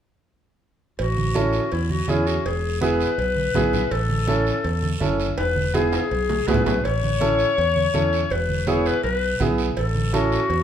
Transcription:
0.99 fingered electric bass A1, clarinet F#4, cowbell, high conga, long guiro
1.17 high conga
1.35 upright piano C#4 E4 A4, high conga, short guiro
1.53 short guiro
1.72 fingered electric bass E2, clarinet E4, cowbell, high conga, long guiro
1.90 clarinet F#4, high conga
2.08 fingered electric bass E2, upright piano C#4 E4 G#4, clarinet E4, high conga, short guiro
2.27 clarinet F#4, short guiro
2.45 fingered electric bass E1, clarinet G#4, cowbell, high conga, long guiro
2.81 upright piano B3 E4 G#4, clarinet B4, high conga, short guiro
3.01 short guiro
3.18 fingered electric bass B1, cowbell, high conga, long guiro
3.36 high conga
3.55 fingered electric bass B1, upright piano B3 E4 G#4, high conga, low conga, low timbale, short guiro
3.73 low conga, short guiro
3.91 fingered electric bass A1, clarinet A4, cowbell, high conga, long guiro
4.10 high conga
4.27 upright piano C#4 E4 A4, high conga, short guiro
4.46 short guiro
4.64 fingered electric bass E2, cowbell, high conga, long guiro
4.83 high conga
5.00 fingered electric bass F#1, upright piano C#4 E4 A4, high conga, short guiro
5.20 short guiro
5.37 fingered electric bass E1, clarinet B4, cowbell, high conga, high timbale, long guiro
5.56 high conga
5.74 upright piano B3 E4 G#4, clarinet G#4, high conga, high timbale, short guiro
5.93 high timbale, short guiro
6.11 fingered electric bass B1, cowbell, high conga, long guiro
6.29 high conga, low timbale
6.47 fingered electric bass C#2, upright piano B3 E4 G#4, clarinet B4, low timbale, short guiro
6.54 low conga
6.66 fingered electric bass B1, clarinet B4, low conga, low timbale, short guiro
6.84 fingered electric bass A1, clarinet C#5, cowbell, high conga, long guiro
7.03 high conga
7.20 upright piano C#4 E4 A4, high conga, short guiro
7.39 short guiro
7.58 fingered electric bass E2, cowbell, high conga, long guiro
7.76 high conga
7.94 fingered electric bass E2, upright piano C#4 E4 A4, high conga, short guiro
8.13 short guiro
8.30 fingered electric bass E1, clarinet B4, cowbell, high conga, long guiro
8.49 high conga
8.67 upright piano B3 E4 G#4, clarinet C#5, high conga, short guiro
8.86 clarinet B4, short guiro
9.03 fingered electric bass B1, clarinet B4, cowbell, high conga, long guiro
9.40 fingered electric bass B1, upright piano B3 E4 G#4, high conga, low conga, short guiro
9.58 short guiro
9.77 fingered electric bass A1, clarinet A4, cowbell, long guiro
9.95 high conga
10.13 upright piano C#4 E4 A4, clarinet F#4, high conga, short guiro
10.32 short guiro
10.50 fingered electric bass E2, cowbell, high conga, long guiro

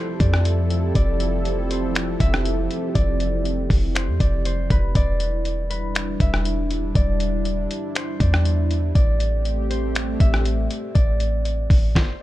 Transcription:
Already playing: analog synth pad F3 C4 E4 G4 A4, harp C5 D5
0.20 808-style bass F2, harp D5, kick, closed hi-hat
0.34 cross-stick
0.45 closed hi-hat
0.70 closed hi-hat
0.95 808-style bass F1, harp D5, kick, closed hi-hat
1.20 closed hi-hat
1.45 closed hi-hat
1.71 harp C5, closed hi-hat
1.95 finger snap, closed hi-hat
2.20 808-style bass F1, harp E5, kick, closed hi-hat
2.34 cross-stick
2.45 closed hi-hat
2.71 closed hi-hat
2.95 808-style bass F1, harp D5, kick, closed hi-hat
3.20 closed hi-hat
3.45 closed hi-hat
3.70 808-style bass F1, kick, open hi-hat
3.95 harp C5, finger snap, closed hi-hat
4.08 808-style bass F2
4.20 808-style bass F1, harp D5, kick, closed hi-hat
4.45 harp C5, closed hi-hat
4.70 808-style bass F1, harp B4, kick, closed hi-hat
4.95 808-style bass E1, analog synth pad G3 D4, harp D5, kick, closed hi-hat
5.20 closed hi-hat
5.45 closed hi-hat
5.70 harp B4, closed hi-hat
5.95 finger snap, closed hi-hat
6.20 808-style bass E1, harp E5, kick, closed hi-hat
6.34 cross-stick
6.45 closed hi-hat
6.71 closed hi-hat
6.95 808-style bass E1, harp D5, kick, closed hi-hat
7.20 closed hi-hat
7.45 closed hi-hat
7.71 closed hi-hat
7.95 harp C5, finger snap, closed hi-hat
8.20 808-style bass E2, harp D5, kick, closed hi-hat
8.34 cross-stick
8.45 closed hi-hat
8.71 closed hi-hat
8.95 808-style bass A1, analog synth pad A3 C4 G4, harp D5, kick, closed hi-hat
9.20 closed hi-hat
9.45 closed hi-hat
9.70 harp C5, closed hi-hat
9.95 finger snap, closed hi-hat
10.20 808-style bass A1, harp E5, kick, closed hi-hat
10.34 cross-stick
10.45 closed hi-hat
10.71 closed hi-hat
10.95 808-style bass A1, harp D5, kick, closed hi-hat
11.20 closed hi-hat
11.45 closed hi-hat
11.70 808-style bass A1, kick, open hi-hat
11.95 harp C5, kick, snare

